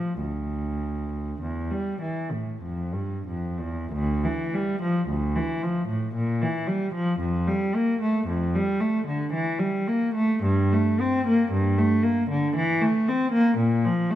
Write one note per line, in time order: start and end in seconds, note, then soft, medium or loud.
0.00 0.21 F3 medium
0.21 1.39 D2 soft
1.42 1.71 E2 soft
1.71 2.01 G3 soft
2.02 2.32 E3 soft
2.32 2.63 A2 soft
2.63 2.94 F2 soft
2.94 3.27 G2 soft
3.28 3.60 F2 soft
3.61 3.93 E2 soft
3.93 4.23 D2 medium
4.24 4.53 E3 medium
4.54 4.82 G3 medium
4.82 5.09 F3 medium
5.09 5.35 D2 medium
5.36 5.62 E3 medium
5.64 5.89 F3 medium
5.89 6.14 A2 medium
6.15 6.41 A#2 medium
6.42 6.68 E3 soft
6.68 6.94 G3 medium
6.95 7.20 F3 medium
7.20 7.46 F2 medium
7.48 7.74 G3 medium
7.76 8.01 A#3 medium
8.02 8.27 A3 medium
8.28 8.53 F2 medium
8.55 8.80 G3 medium
8.81 9.06 A3 medium
9.08 9.32 D3 medium
9.33 9.58 E3 medium
9.60 9.86 G3 medium
9.88 10.15 A#3 medium
10.15 10.42 A3 medium
10.43 10.71 G2 medium
10.73 10.99 A3 medium
11.01 11.25 C4 medium
11.27 11.51 A#3 medium
11.52 11.77 G2 medium
11.78 12.03 A3 medium
12.03 12.29 A#3 medium
12.31 12.55 D3 medium
12.56 12.81 E3 medium
12.82 13.07 A3 medium
13.08 13.33 C4 medium
13.33 13.58 A#3 medium
13.58 13.83 A#2 medium
13.85 14.10 F3 medium
14.11 14.15 A3 medium